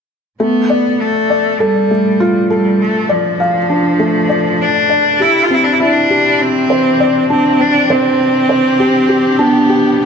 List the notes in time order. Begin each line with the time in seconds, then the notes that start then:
0.40 A2 A3 B3
0.70 D5
0.96 F3
1.01 A3
1.30 D5
1.41 D4
1.60 G3 A4
1.91 A3
2.20 F4
2.50 G3 A4
2.57 A4
2.81 A3
3.09 F3 D5
3.40 F5
3.70 D4
4.00 A3
4.29 D5
4.62 D4
4.90 D5
5.20 C3 E4 G4
5.43 F4
5.50 E3 C4
5.54 E4
5.64 D4
5.73 E4
5.80 D4 E4
6.10 G4
6.41 C4
6.53 G4
6.70 C5
7.00 D5
7.30 C4 D4
7.60 C4 D4
7.90 C4 C5
8.49 C5
8.79 G4
9.09 G4
9.39 B3 D4
9.69 G4
10.00 B2 B3